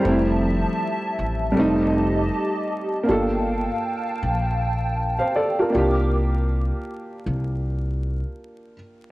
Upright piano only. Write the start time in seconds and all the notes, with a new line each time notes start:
Already playing: G4 C5
0.00 G3 A3
0.05 C4 E4
1.52 G3 A3
1.57 C4 D#4
3.03 A#3 D4
3.09 F4 A4
5.19 C5 F5
5.36 A4 D5
5.59 F4 A#4
5.70 A#3 D4
5.75 F4 G4